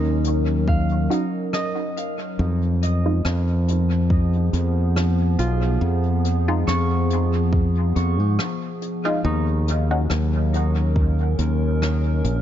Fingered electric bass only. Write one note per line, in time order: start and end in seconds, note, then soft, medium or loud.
0.00 1.07 D#2 medium
2.39 3.21 F2 medium
3.25 4.50 F2 medium
4.53 5.35 F2 medium
5.39 5.77 B1 medium
5.81 6.64 F2 medium
6.67 7.92 F2 medium
7.96 8.20 F2 medium
8.20 8.37 G#2 medium
9.25 10.07 D#2 medium
10.10 11.35 D#2 medium
11.39 12.21 D#2 medium
12.24 12.42 A#1 medium